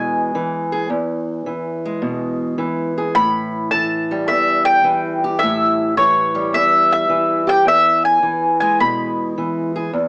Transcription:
Already playing: steel-string acoustic guitar E2 B2 E3 G#3 G#4, mandolin G#5
0.35 steel-string acoustic guitar E3
0.72 steel-string acoustic guitar G#4
0.90 steel-string acoustic guitar E2
1.46 steel-string acoustic guitar E3
1.85 steel-string acoustic guitar G#3
2.02 steel-string acoustic guitar B2
2.58 steel-string acoustic guitar E3
2.98 steel-string acoustic guitar G#4
3.15 steel-string acoustic guitar A2, mandolin B5
3.71 steel-string acoustic guitar E3, mandolin A5
4.11 steel-string acoustic guitar G3
4.28 steel-string acoustic guitar E2, mandolin E5
4.65 mandolin G5
4.84 steel-string acoustic guitar E3
5.24 steel-string acoustic guitar G4
5.39 mandolin E5
5.43 steel-string acoustic guitar A2
5.97 steel-string acoustic guitar E3, mandolin C#5
6.35 steel-string acoustic guitar G3
6.53 steel-string acoustic guitar E2, mandolin E5
6.92 mandolin E5
7.09 steel-string acoustic guitar E3
7.47 steel-string acoustic guitar G4, mandolin G5
7.66 steel-string acoustic guitar E2, mandolin E5
8.05 mandolin G#5
8.23 steel-string acoustic guitar E3
8.60 steel-string acoustic guitar G#3, mandolin G#5
8.80 steel-string acoustic guitar B2, mandolin B5
9.38 steel-string acoustic guitar E3
9.76 steel-string acoustic guitar G#4
9.93 steel-string acoustic guitar E2

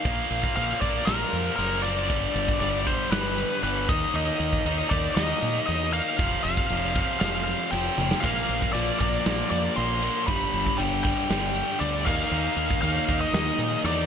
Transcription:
Already playing: lead electric guitar F5
0.05 fingered electric bass A#1, distorted electric guitar A#2 F3 A#3, kick, crash
0.31 fingered electric bass A#1, ride
0.44 kick
0.56 fingered electric bass A#1, distorted electric guitar A#2 F3 A#3, lead electric guitar F5, ride
0.81 fingered electric bass A#1, distorted electric guitar A#2 F3 A#3, lead electric guitar D5, kick, ride
1.05 fingered electric bass A#1, distorted electric guitar A#2 F3 A#3, lead electric guitar A#4, snare, ride
1.33 fingered electric bass F2, ride
1.56 fingered electric bass F#1, distorted electric guitar A#2 F3 A#3, lead electric guitar A#4, ride
1.82 distorted electric guitar A#2 F3 A#3, lead electric guitar D5, ride
2.09 fingered electric bass G1, distorted electric guitar G2 D3 G3, kick, ride
2.35 fingered electric bass G1, ride
2.48 kick
2.60 fingered electric bass G1, distorted electric guitar G2 D3 G3, lead electric guitar D5, ride
2.87 distorted electric guitar G2 D3 G3, lead electric guitar C5, kick, ride
3.12 fingered electric bass G1, distorted electric guitar G2 D3 G3, lead electric guitar B4, snare, ride
3.38 ride
3.63 fingered electric bass G1, distorted electric guitar G2 D3 G3, lead electric guitar B4, ride
3.89 fingered electric bass D#2, distorted electric guitar D#3 A#3 D#4, lead electric guitar D#5, kick, snare, ride
4.14 fingered electric bass D#2, distorted electric guitar D#3 A#3 D#4, lead electric guitar D#5, ride
4.40 fingered electric bass D#2, ride
4.53 kick
4.65 fingered electric bass D#2, distorted electric guitar D#3 A#3 D#4, ride
4.90 fingered electric bass D#2, distorted electric guitar D#3 A#3 D#4, lead electric guitar D5, kick, ride
5.15 fingered electric bass D#2, distorted electric guitar D#3 A#3 D#4, lead electric guitar D#5, snare, ride
5.42 fingered electric bass A#2, ride
5.67 fingered electric bass E2, distorted electric guitar D#3 A#3 D#4, lead electric guitar D#5, ride
5.93 distorted electric guitar D#3 A#3 D#4, lead electric guitar F5, ride
6.19 fingered electric bass F1, distorted electric guitar F2 C3 F3, kick, ride
6.44 fingered electric bass F1, lead electric guitar F5, ride
6.57 kick
6.69 fingered electric bass F1, distorted electric guitar F2 C3 F3, ride
6.95 distorted electric guitar F2 C3 F3, kick, ride
7.20 fingered electric bass F1, distorted electric guitar F2 C3 F3, lead electric guitar F5, snare, ride
7.47 ride
7.71 fingered electric bass F1, distorted electric guitar F2 C3 F3, lead electric guitar G5, ride
7.98 fingered electric bass F1, distorted electric guitar F2 C3 F3, high tom
8.11 snare
8.20 fingered electric bass A#1, distorted electric guitar A#2 F3 A#3, lead electric guitar F5, kick, crash
8.49 fingered electric bass A#1, ride
8.62 kick
8.73 fingered electric bass A#1, distorted electric guitar A#2 F3 A#3, lead electric guitar D5, ride
8.99 fingered electric bass A#1, distorted electric guitar A#2 F3 A#3, lead electric guitar D5, kick, ride
9.26 fingered electric bass A#1, distorted electric guitar A#2 F3 A#3, snare, ride
9.50 fingered electric bass F2, lead electric guitar D5, ride
9.76 fingered electric bass A#1, distorted electric guitar A#2 F3 A#3, lead electric guitar C6, ride
10.02 distorted electric guitar A#2 F3 A#3, ride
10.27 fingered electric bass G1, distorted electric guitar G2 D3 G3, lead electric guitar B5, kick, ride
10.54 fingered electric bass G1, ride
10.67 kick
10.78 fingered electric bass G1, distorted electric guitar G2 D3 G3, lead electric guitar G5, ride
11.04 distorted electric guitar G2 D3 G3, lead electric guitar G5, kick, ride
11.30 fingered electric bass G1, distorted electric guitar G2 D3 G3, snare, ride
11.56 ride
11.80 fingered electric bass D2, distorted electric guitar G2 D3 G3, lead electric guitar D5, ride
12.06 fingered electric bass D#2, distorted electric guitar D#3 A#3 D#4, lead electric guitar F5, kick, crash
12.31 fingered electric bass D#2, distorted electric guitar D#3 A#3 D#4
12.57 fingered electric bass D#2, ride
12.71 kick
12.82 fingered electric bass D#2, distorted electric guitar D#3 A#3 D#4, lead electric guitar F5, ride
13.08 fingered electric bass D#2, distorted electric guitar D#3 A#3 D#4, kick, ride
13.21 lead electric guitar D#5
13.33 fingered electric bass D#2, distorted electric guitar D#3 A#3 D#4, lead electric guitar D#5, snare, ride
13.59 fingered electric bass A#2, ride
13.84 fingered electric bass E2, distorted electric guitar D#3 A#3 D#4, lead electric guitar D5, ride

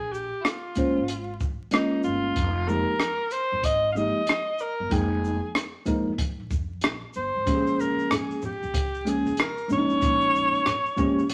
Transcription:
Already playing: upright bass A#1, alto saxophone G#4
0.12 alto saxophone G4, shaker
0.41 alto saxophone E4 F4, cross-stick
0.46 closed hi-hat
0.76 tine electric piano G#3 A#3 C#4 F4 C5, kick, closed hi-hat, shaker
0.97 upright bass G#1
1.08 closed hi-hat
1.40 kick, shaker
1.71 tine electric piano G#3 A#3 C#4 F4 A#4, alto saxophone D#4, cross-stick, closed hi-hat
2.03 upright bass G1, alto saxophone F4, shaker
2.36 upright bass F1, kick, closed hi-hat
2.67 tine electric piano F3 G#3 A#3 D#4 G4, alto saxophone A#4, shaker
3.00 cross-stick, closed hi-hat
3.31 alto saxophone C5, closed hi-hat, shaker
3.52 upright bass G#1
3.63 alto saxophone D#5, kick, closed hi-hat
3.92 tine electric piano F3 G#3 A#3, alto saxophone D#5 F5, shaker
3.97 tine electric piano D#4 G4
4.27 cross-stick, closed hi-hat
4.59 alto saxophone A#4, shaker
4.80 upright bass G1
4.90 upright bass F1, tine electric piano F3 G#3 A#3 D#4 G5, alto saxophone G#4, kick, closed hi-hat
5.25 shaker
5.55 cross-stick, closed hi-hat
5.85 tine electric piano F3 G#3 A#3 D#4 A#4, kick, closed hi-hat, shaker
6.07 upright bass G1
6.18 kick, closed hi-hat
6.40 upright bass A#1
6.51 upright bass F2, kick, shaker
6.81 upright bass A#1, cross-stick, closed hi-hat
7.13 upright bass G1, alto saxophone C5, shaker
7.36 upright bass G#1
7.46 upright bass A#1, tine electric piano F3 G#3 A#3 C#4 G4, kick, closed hi-hat, maracas
7.54 tine electric piano G#4
7.67 maracas
7.79 alto saxophone A#4, high conga, maracas, shaker
7.99 maracas
8.11 alto saxophone G#4, cross-stick, closed hi-hat, low conga, maracas
8.31 maracas
8.42 alto saxophone G4, low conga, shaker, maracas
8.63 upright bass C#2, maracas
8.74 kick, closed hi-hat, high conga, maracas
8.94 maracas
9.05 tine electric piano F3 G#3 A#3 C#4 G#4, closed hi-hat, shaker, maracas
9.10 alto saxophone G#4
9.26 high conga, maracas
9.37 alto saxophone A#4, cross-stick, closed hi-hat, maracas
9.57 maracas
9.68 tine electric piano F3 G#3 A#3 C#4 D4, low conga, shaker, maracas
9.73 alto saxophone C#5
9.78 tine electric piano D#4
9.90 upright bass G#1, maracas
10.02 upright bass A#1, kick, closed hi-hat, maracas
10.21 maracas
10.35 high conga, maracas, shaker
10.54 maracas
10.66 cross-stick, closed hi-hat, low conga, maracas
10.86 maracas
10.97 tine electric piano F3 G#3 A#3 C#4 G4, kick, low conga, maracas, shaker
11.18 upright bass G#1, maracas
11.29 closed hi-hat, high conga, maracas

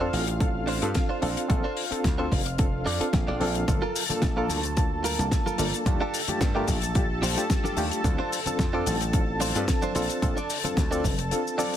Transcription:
Already playing: analog synth pad F4 F5
0.00 reed electric piano C4 D4 F4 A4, clean electric guitar D4 F4 C5
0.13 slap bass A1, open hi-hat
0.28 muted clean electric guitar stroke, closed hi-hat
0.40 reed electric piano C4 D4 F4 A4, kick, closed hi-hat
0.67 clean electric guitar D4 F4 C5, open hi-hat
0.82 slap bass G2, reed electric piano C4 D4 F4 A4, closed hi-hat
0.94 kick, snare, closed hi-hat
1.09 clean electric guitar D4 F4 C5
1.22 slap bass A#1, reed electric piano C4 D4 F4 A4, clean electric guitar D4 A4 C5, open hi-hat
1.37 closed hi-hat
1.49 slap bass A#1, reed electric piano C4 D4 F4 A4, kick, closed hi-hat
1.64 clean electric guitar D4 A4 C5
1.77 open hi-hat
1.91 reed electric piano C4 D4 F4 A4, muted slap bass stroke, closed hi-hat
2.04 slap bass D2, muted clean electric guitar stroke, kick, snare, closed hi-hat
2.18 reed electric piano C4 D4 F4 A4, clean electric guitar D4 A4 C5
2.32 slap bass F1, kick, open hi-hat
2.46 muted clean electric guitar stroke, closed hi-hat
2.58 reed electric piano C4 D4 F4 A4, kick, closed hi-hat
2.86 slap bass F2, clean electric guitar D4 A4 D5, open hi-hat
3.00 reed electric piano C4 D4 F4 A4, muted slap bass stroke, closed hi-hat
3.13 slap bass A#1, kick, snare, closed hi-hat
3.27 slap bass A#1, clean electric guitar D4 A4 D5
3.40 slap bass A#1, reed electric piano C4 D4 F4 A4, open hi-hat
3.55 closed hi-hat
3.68 slap bass G1, reed electric piano A#3 D4 F4 A4, analog synth pad A4 A5, kick, closed hi-hat, high conga, low conga, cabasa
3.82 clean electric guitar F4 A4 A#4
3.95 open hi-hat, cabasa
4.09 reed electric piano A#3 D4 F4 A4, muted slap bass stroke, closed hi-hat, high conga, low conga, cabasa
4.22 slap bass A#1, muted clean electric guitar stroke, kick, snare, closed hi-hat, cabasa
4.36 reed electric piano A#3 D4 F4 A4, clean electric guitar F4 A4 A#4
4.48 slap bass D2, open hi-hat, high conga, cabasa
4.63 muted clean electric guitar stroke, closed hi-hat, cabasa
4.77 reed electric piano A#3 D4 F4 A5, kick, closed hi-hat, cabasa
5.04 clean electric guitar F4 A4 A#4, open hi-hat, high conga, cabasa
5.19 slap bass C2, reed electric piano A#3 D4 F4 A5, closed hi-hat, cabasa
5.31 kick, snare, closed hi-hat, cabasa
5.46 clean electric guitar F4 A4 A#4, high conga, cabasa
5.58 slap bass G1, reed electric piano A#3 D4 F4 A4, open hi-hat, cabasa
5.74 closed hi-hat, cabasa
5.85 slap bass D#2, reed electric piano A3 D4 F4 G4, kick, closed hi-hat, high conga, low conga, cabasa
6.00 clean electric guitar D4 F4 G4 A4
6.14 open hi-hat, cabasa
6.28 reed electric piano A3 D4 F4 G4, muted slap bass stroke, closed hi-hat, high conga, low conga, cabasa
6.40 slap bass G2, muted clean electric guitar stroke, kick, snare, closed hi-hat, cabasa
6.55 reed electric piano A3 D4 F4 G4, clean electric guitar D4 F4 G4 A#4
6.68 slap bass A#1, kick, open hi-hat, high conga, cabasa
6.82 muted clean electric guitar stroke, closed hi-hat, cabasa
6.95 reed electric piano D4 F4 G4, kick, closed hi-hat, cabasa
7.22 slap bass A#1, clean electric guitar D4 F4 G4 C5, open hi-hat, high conga, cabasa
7.37 reed electric piano A3 D4 F4 G4, closed hi-hat, cabasa
7.50 kick, snare, closed hi-hat, cabasa
7.64 clean electric guitar D4 F4 G4 A4, high conga, cabasa
7.77 slap bass D#2, reed electric piano A3 D4 F4 G4, open hi-hat, cabasa
7.91 closed hi-hat, cabasa
8.04 slap bass D2, reed electric piano C4 D4 F4 A4, kick, closed hi-hat, high conga, low conga, cabasa
8.18 clean electric guitar D4 F4 C5
8.32 open hi-hat, cabasa
8.46 reed electric piano C4 D4 F4 A4, muted slap bass stroke, closed hi-hat, high conga, low conga, cabasa
8.59 slap bass F2, muted clean electric guitar stroke, kick, snare, closed hi-hat, cabasa
8.73 reed electric piano C4 D4 F4 A4, clean electric guitar D4 F4 D5
8.86 slap bass A1, open hi-hat, high conga, cabasa
9.00 muted clean electric guitar stroke, closed hi-hat, cabasa
9.13 reed electric piano C4 D4 F4 A4, kick, closed hi-hat, cabasa
9.40 clean electric guitar D4 F4 C5, open hi-hat, high conga, cabasa
9.55 slap bass G2, reed electric piano C4 D4 F4 A4, closed hi-hat, cabasa
9.68 kick, snare, closed hi-hat, cabasa
9.82 clean electric guitar D4 F4 C5, high conga, cabasa
9.95 slap bass A#1, reed electric piano C4 D4 F4 A4, clean electric guitar D4 A4 C5, open hi-hat, cabasa
10.10 closed hi-hat, cabasa
10.22 slap bass A#1, reed electric piano C4 D4 F4 A4, kick, closed hi-hat, high conga, low conga, cabasa
10.37 clean electric guitar D4 A4 D5, cabasa
10.50 open hi-hat, cabasa
10.64 reed electric piano C4 D4 F4 A4, muted slap bass stroke, closed hi-hat, high conga, low conga, cabasa
10.76 slap bass D2, muted clean electric guitar stroke, kick, snare, closed hi-hat, cabasa
10.91 reed electric piano C4 D4 F4 A4, clean electric guitar D4 A4 D5, cabasa
11.04 slap bass F1, kick, open hi-hat, high conga, cabasa
11.18 muted clean electric guitar stroke, closed hi-hat, cabasa
11.31 reed electric piano C4 D4 F4 A4, closed hi-hat, cabasa
11.47 cabasa
11.58 reed electric piano C4 D4 F4 A4, clean electric guitar D4 A4 D5, open hi-hat, high conga, cabasa
11.74 closed hi-hat

